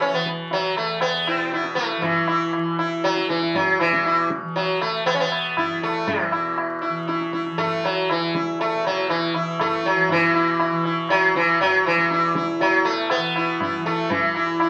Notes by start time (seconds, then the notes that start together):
Already playing: E2 B2 E3
0.01 C#4, tabla na
0.11 E3 B3
0.26 tabla ke
0.51 F#3, tabla tin
0.73 E2
0.77 A3, tabla na
1.01 B3, tabla na
1.27 E4, tabla na
1.33 B2
1.52 E4, tabla te
1.64 tabla te
1.75 A3, tabla ke
1.90 tabla te
1.96 E3
2.02 E3, tabla tin, tabla ge
2.28 E4, tabla na
2.53 E3, tabla na
2.79 E4, tabla na
3.04 F#3, tabla te
3.17 E2, tabla te
3.29 E3, tabla ke
3.42 tabla te
3.55 F#3, tabla tin, tabla ge
3.79 B2 E3, tabla na
3.93 tabla ke
4.06 E4, tabla na
4.30 tabla ke
4.42 E3
4.56 F#3, tabla tin
4.81 A3, tabla na
5.03 E3 B3, tabla na
5.14 C#4
5.20 B3
5.32 tabla na
5.57 E4, tabla na, tabla ge
5.66 E2
5.82 A3, tabla te
6.07 E3, tabla tin, tabla ge
6.27 B2
6.32 E4, tabla na
6.58 tabla na
6.82 E4, tabla na
6.88 E3
7.08 E4, tabla te
7.21 tabla te
7.33 E4, tabla ke
7.47 E3, tabla te
7.58 A3, tabla tin, tabla ge
7.84 F#3, tabla na
8.10 E2 E3, tabla na
8.34 E4, tabla ke
8.60 A3, tabla tin
8.74 B2
8.85 F#3, tabla na
9.09 E3, tabla na
9.34 E3 E4, tabla na
9.59 A3, tabla na, tabla ge
9.83 F#3, tabla te
9.95 E3
10.09 B2 E3 E4, tabla tin, tabla ge
10.34 E4, tabla na
10.60 E4, tabla na
10.71 E3
10.85 E4, tabla na
11.09 F#3, tabla na
11.33 E3, tabla ke
11.61 F#3, tabla tin, tabla ge
11.86 E3, tabla na
11.94 E2
11.98 tabla ke
12.11 E4, tabla te
12.23 tabla te
12.35 E4, tabla ke
12.48 tabla te
12.55 B2
12.60 F#3, tabla tin
12.85 A3, tabla na
13.10 B3, tabla na
13.16 E3
13.36 E4, tabla na
13.60 E4, tabla na, tabla ge
13.77 E3
13.85 A3, tabla te
14.10 E3, tabla tin, tabla ge
14.35 E2 E4, tabla na
14.60 E4, tabla na